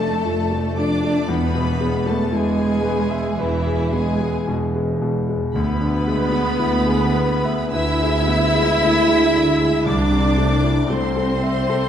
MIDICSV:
0, 0, Header, 1, 9, 480
1, 0, Start_track
1, 0, Tempo, 1048951
1, 594, Time_signature, 4, 2, 24, 8
1, 1554, Tempo, 1067616
1, 2994, Tempo, 1111111
1, 3954, Tempo, 1050788
1, 5355, End_track
2, 0, Start_track
2, 0, Title_t, "Violin section"
2, 0, Program_c, 0, 48
2, 0, Note_on_c, 0, 81, 105
2, 352, Note_on_c, 0, 86, 97
2, 353, Note_off_c, 0, 81, 0
2, 587, Note_off_c, 0, 86, 0
2, 594, Note_on_c, 0, 83, 100
2, 945, Note_on_c, 0, 81, 101
2, 950, Note_off_c, 0, 83, 0
2, 1068, Note_off_c, 0, 81, 0
2, 1068, Note_on_c, 0, 80, 109
2, 1545, Note_on_c, 0, 76, 97
2, 1553, Note_off_c, 0, 80, 0
2, 1796, Note_off_c, 0, 76, 0
2, 1799, Note_on_c, 0, 80, 97
2, 2044, Note_off_c, 0, 80, 0
2, 2515, Note_on_c, 0, 83, 113
2, 3463, Note_off_c, 0, 83, 0
2, 3480, Note_on_c, 0, 88, 127
2, 4423, Note_on_c, 0, 86, 114
2, 4430, Note_off_c, 0, 88, 0
2, 4891, Note_off_c, 0, 86, 0
2, 4898, Note_on_c, 0, 84, 106
2, 5355, Note_off_c, 0, 84, 0
2, 5355, End_track
3, 0, Start_track
3, 0, Title_t, "Violin section"
3, 0, Program_c, 1, 48
3, 0, Note_on_c, 1, 69, 90
3, 357, Note_off_c, 1, 69, 0
3, 367, Note_on_c, 1, 74, 82
3, 599, Note_off_c, 1, 74, 0
3, 600, Note_on_c, 1, 71, 92
3, 947, Note_off_c, 1, 71, 0
3, 957, Note_on_c, 1, 69, 79
3, 1072, Note_on_c, 1, 68, 86
3, 1073, Note_off_c, 1, 69, 0
3, 1546, Note_off_c, 1, 68, 0
3, 1562, Note_on_c, 1, 64, 88
3, 1804, Note_off_c, 1, 64, 0
3, 1807, Note_on_c, 1, 68, 79
3, 2048, Note_off_c, 1, 68, 0
3, 2525, Note_on_c, 1, 71, 105
3, 3468, Note_off_c, 1, 71, 0
3, 3491, Note_on_c, 1, 76, 116
3, 4417, Note_off_c, 1, 76, 0
3, 4433, Note_on_c, 1, 74, 98
3, 4896, Note_off_c, 1, 74, 0
3, 4909, Note_on_c, 1, 72, 92
3, 5355, Note_off_c, 1, 72, 0
3, 5355, End_track
4, 0, Start_track
4, 0, Title_t, "Cello section"
4, 0, Program_c, 2, 48
4, 0, Note_on_c, 2, 57, 88
4, 357, Note_off_c, 2, 57, 0
4, 360, Note_on_c, 2, 62, 84
4, 595, Note_off_c, 2, 62, 0
4, 597, Note_on_c, 2, 59, 85
4, 945, Note_off_c, 2, 59, 0
4, 951, Note_on_c, 2, 57, 87
4, 1068, Note_on_c, 2, 56, 87
4, 1070, Note_off_c, 2, 57, 0
4, 1553, Note_off_c, 2, 56, 0
4, 1554, Note_on_c, 2, 52, 85
4, 1799, Note_on_c, 2, 56, 85
4, 1800, Note_off_c, 2, 52, 0
4, 2044, Note_off_c, 2, 56, 0
4, 2516, Note_on_c, 2, 59, 95
4, 3464, Note_off_c, 2, 59, 0
4, 3479, Note_on_c, 2, 64, 116
4, 4426, Note_on_c, 2, 62, 96
4, 4430, Note_off_c, 2, 64, 0
4, 4895, Note_on_c, 2, 60, 86
4, 4902, Note_off_c, 2, 62, 0
4, 5355, Note_off_c, 2, 60, 0
4, 5355, End_track
5, 0, Start_track
5, 0, Title_t, "French horn section"
5, 0, Program_c, 3, 60
5, 0, Note_on_c, 3, 57, 98
5, 342, Note_on_c, 3, 62, 89
5, 354, Note_off_c, 3, 57, 0
5, 581, Note_off_c, 3, 62, 0
5, 582, Note_on_c, 3, 59, 95
5, 945, Note_off_c, 3, 59, 0
5, 951, Note_on_c, 3, 57, 86
5, 1070, Note_off_c, 3, 57, 0
5, 1070, Note_on_c, 3, 56, 99
5, 1554, Note_off_c, 3, 56, 0
5, 1555, Note_on_c, 3, 52, 86
5, 1795, Note_on_c, 3, 56, 83
5, 1800, Note_off_c, 3, 52, 0
5, 2042, Note_off_c, 3, 56, 0
5, 2511, Note_on_c, 3, 59, 111
5, 3461, Note_off_c, 3, 59, 0
5, 3480, Note_on_c, 3, 64, 116
5, 4430, Note_off_c, 3, 64, 0
5, 4432, Note_on_c, 3, 62, 100
5, 4905, Note_off_c, 3, 62, 0
5, 4906, Note_on_c, 3, 60, 99
5, 5355, Note_off_c, 3, 60, 0
5, 5355, End_track
6, 0, Start_track
6, 0, Title_t, "Grand piano"
6, 0, Program_c, 4, 0
6, 0, Control_c, 4, 64, 127
6, 0, Note_on_c, 4, 41, 69
6, 0, Note_on_c, 4, 57, 58
6, 0, Note_on_c, 4, 62, 59
6, 0, Note_on_c, 4, 69, 63
6, 0, Note_on_c, 4, 74, 68
6, 0, Note_on_c, 4, 81, 69
6, 64, Note_off_c, 4, 62, 0
6, 113, Note_on_c, 4, 53, 60
6, 186, Note_off_c, 4, 57, 0
6, 233, Note_on_c, 4, 57, 61
6, 309, Note_off_c, 4, 53, 0
6, 354, Note_on_c, 4, 53, 62
6, 427, Note_off_c, 4, 57, 0
6, 474, Note_on_c, 4, 57, 61
6, 545, Note_off_c, 4, 53, 0
6, 575, Note_off_c, 4, 41, 0
6, 588, Note_on_c, 4, 40, 89
6, 593, Note_off_c, 4, 57, 0
6, 601, Control_c, 4, 64, 0
6, 602, Note_off_c, 4, 69, 0
6, 605, Note_off_c, 4, 74, 0
6, 605, Note_off_c, 4, 81, 0
6, 682, Control_c, 4, 64, 127
6, 702, Note_on_c, 4, 47, 64
6, 825, Note_on_c, 4, 56, 67
6, 898, Note_off_c, 4, 47, 0
6, 944, Note_on_c, 4, 59, 68
6, 1019, Note_off_c, 4, 56, 0
6, 1062, Note_on_c, 4, 64, 72
6, 1138, Note_off_c, 4, 59, 0
6, 1182, Note_on_c, 4, 68, 73
6, 1258, Note_off_c, 4, 64, 0
6, 1296, Note_on_c, 4, 71, 79
6, 1379, Note_off_c, 4, 68, 0
6, 1421, Note_on_c, 4, 76, 76
6, 1498, Note_off_c, 4, 71, 0
6, 1550, Note_on_c, 4, 71, 82
6, 1623, Note_off_c, 4, 76, 0
6, 1672, Note_on_c, 4, 68, 75
6, 1748, Note_off_c, 4, 71, 0
6, 1791, Note_on_c, 4, 59, 67
6, 1871, Note_off_c, 4, 68, 0
6, 1916, Note_on_c, 4, 56, 70
6, 1992, Note_off_c, 4, 59, 0
6, 2038, Note_on_c, 4, 47, 72
6, 2114, Note_off_c, 4, 56, 0
6, 2165, Note_on_c, 4, 56, 69
6, 2234, Note_off_c, 4, 47, 0
6, 2282, Note_on_c, 4, 47, 69
6, 2355, Note_off_c, 4, 56, 0
6, 2405, Note_on_c, 4, 56, 70
6, 2472, Note_off_c, 4, 47, 0
6, 2499, Note_off_c, 4, 40, 0
6, 2521, Note_off_c, 4, 56, 0
6, 2524, Note_on_c, 4, 38, 90
6, 2528, Control_c, 4, 64, 0
6, 2608, Control_c, 4, 64, 127
6, 2638, Note_on_c, 4, 50, 72
6, 2756, Note_on_c, 4, 56, 70
6, 2827, Note_off_c, 4, 50, 0
6, 2871, Note_on_c, 4, 59, 72
6, 2946, Note_off_c, 4, 56, 0
6, 2992, Note_on_c, 4, 64, 76
6, 3062, Note_off_c, 4, 59, 0
6, 3109, Note_on_c, 4, 68, 80
6, 3184, Note_off_c, 4, 64, 0
6, 3236, Note_on_c, 4, 71, 85
6, 3309, Note_off_c, 4, 68, 0
6, 3361, Note_on_c, 4, 76, 82
6, 3435, Note_off_c, 4, 71, 0
6, 3485, Note_on_c, 4, 71, 85
6, 3556, Note_off_c, 4, 76, 0
6, 3604, Note_on_c, 4, 68, 75
6, 3675, Note_off_c, 4, 71, 0
6, 3718, Note_on_c, 4, 59, 72
6, 3791, Note_off_c, 4, 68, 0
6, 3837, Note_on_c, 4, 56, 70
6, 3905, Note_off_c, 4, 59, 0
6, 3953, Note_on_c, 4, 50, 73
6, 4027, Note_off_c, 4, 56, 0
6, 4075, Note_on_c, 4, 56, 68
6, 4147, Note_off_c, 4, 50, 0
6, 4199, Note_on_c, 4, 50, 66
6, 4267, Note_off_c, 4, 56, 0
6, 4312, Note_on_c, 4, 56, 69
6, 4387, Note_off_c, 4, 50, 0
6, 4415, Note_off_c, 4, 38, 0
6, 4428, Note_on_c, 4, 36, 90
6, 4431, Note_off_c, 4, 56, 0
6, 4438, Control_c, 4, 64, 0
6, 4514, Control_c, 4, 64, 127
6, 4545, Note_on_c, 4, 48, 70
6, 4665, Note_on_c, 4, 57, 69
6, 4736, Note_off_c, 4, 48, 0
6, 4782, Note_on_c, 4, 64, 75
6, 4856, Note_off_c, 4, 57, 0
6, 4904, Note_on_c, 4, 57, 76
6, 4976, Note_off_c, 4, 64, 0
6, 5023, Note_on_c, 4, 69, 78
6, 5099, Note_off_c, 4, 57, 0
6, 5146, Note_on_c, 4, 76, 75
6, 5220, Note_off_c, 4, 69, 0
6, 5266, Note_on_c, 4, 69, 78
6, 5344, Note_off_c, 4, 76, 0
6, 5355, Note_off_c, 4, 36, 0
6, 5355, Note_off_c, 4, 69, 0
6, 5355, End_track
7, 0, Start_track
7, 0, Title_t, "Viola section"
7, 0, Program_c, 5, 48
7, 0, Note_on_c, 5, 57, 92
7, 344, Note_off_c, 5, 57, 0
7, 355, Note_on_c, 5, 62, 98
7, 593, Note_off_c, 5, 62, 0
7, 594, Note_on_c, 5, 59, 87
7, 944, Note_off_c, 5, 59, 0
7, 947, Note_on_c, 5, 57, 84
7, 1069, Note_off_c, 5, 57, 0
7, 1071, Note_on_c, 5, 56, 96
7, 1545, Note_off_c, 5, 56, 0
7, 1557, Note_on_c, 5, 52, 94
7, 1801, Note_off_c, 5, 52, 0
7, 1802, Note_on_c, 5, 56, 83
7, 2041, Note_off_c, 5, 56, 0
7, 2520, Note_on_c, 5, 59, 110
7, 3465, Note_off_c, 5, 59, 0
7, 3482, Note_on_c, 5, 64, 126
7, 4431, Note_off_c, 5, 64, 0
7, 4432, Note_on_c, 5, 62, 105
7, 4896, Note_off_c, 5, 62, 0
7, 4906, Note_on_c, 5, 60, 97
7, 5355, Note_off_c, 5, 60, 0
7, 5355, End_track
8, 0, Start_track
8, 0, Title_t, "Double bass section"
8, 0, Program_c, 6, 48
8, 0, Note_on_c, 6, 41, 79
8, 58, Note_off_c, 6, 41, 0
8, 115, Note_on_c, 6, 41, 77
8, 538, Note_off_c, 6, 41, 0
8, 594, Note_on_c, 6, 40, 94
8, 1014, Note_off_c, 6, 40, 0
8, 1072, Note_on_c, 6, 40, 82
8, 1497, Note_off_c, 6, 40, 0
8, 1552, Note_on_c, 6, 40, 91
8, 1986, Note_off_c, 6, 40, 0
8, 2043, Note_on_c, 6, 40, 86
8, 2464, Note_off_c, 6, 40, 0
8, 2519, Note_on_c, 6, 38, 100
8, 2937, Note_off_c, 6, 38, 0
8, 2995, Note_on_c, 6, 38, 85
8, 3426, Note_off_c, 6, 38, 0
8, 3482, Note_on_c, 6, 38, 93
8, 3898, Note_off_c, 6, 38, 0
8, 3950, Note_on_c, 6, 38, 86
8, 4374, Note_off_c, 6, 38, 0
8, 4432, Note_on_c, 6, 36, 102
8, 4849, Note_off_c, 6, 36, 0
8, 4902, Note_on_c, 6, 36, 87
8, 5335, Note_off_c, 6, 36, 0
8, 5355, End_track
9, 0, Start_track
9, 0, Title_t, "Tuba"
9, 0, Program_c, 7, 58
9, 0, Note_on_c, 7, 29, 78
9, 56, Note_off_c, 7, 29, 0
9, 117, Note_on_c, 7, 29, 79
9, 539, Note_off_c, 7, 29, 0
9, 594, Note_on_c, 7, 28, 84
9, 1014, Note_off_c, 7, 28, 0
9, 1068, Note_on_c, 7, 28, 85
9, 1495, Note_off_c, 7, 28, 0
9, 1550, Note_on_c, 7, 28, 90
9, 1985, Note_off_c, 7, 28, 0
9, 2041, Note_on_c, 7, 28, 87
9, 2463, Note_off_c, 7, 28, 0
9, 2514, Note_on_c, 7, 38, 96
9, 2934, Note_off_c, 7, 38, 0
9, 2988, Note_on_c, 7, 38, 87
9, 3422, Note_off_c, 7, 38, 0
9, 3481, Note_on_c, 7, 38, 94
9, 3897, Note_off_c, 7, 38, 0
9, 3949, Note_on_c, 7, 38, 88
9, 4374, Note_off_c, 7, 38, 0
9, 4426, Note_on_c, 7, 36, 95
9, 4846, Note_off_c, 7, 36, 0
9, 4898, Note_on_c, 7, 36, 82
9, 5333, Note_off_c, 7, 36, 0
9, 5355, End_track
0, 0, End_of_file